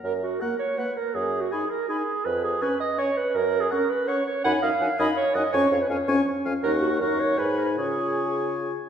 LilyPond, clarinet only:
\new Staff \with { instrumentName = "Clarinet" } { \time 3/4 \key fis \major \tempo 4 = 163 ais'8 fis'8 ais'8 cis''8 b'8 ais'8 | \tuplet 3/2 { gis'4 fis'8 } gis'8 ais'8 gis'4 | b'8 gis'8 b'8 dis''8 cis''8 b'8 | \tuplet 3/2 { ais'4 gis'8 } ais'8 b'8 cis''8 cis''8 |
fis''8 eis''4 dis''8 cis''8 dis''8 | cis''8. b'16 cis''4 r4 | ais'8 fis'8 ais'8 cis''8 b'8 ais'8 | gis'2~ gis'8 r8 | }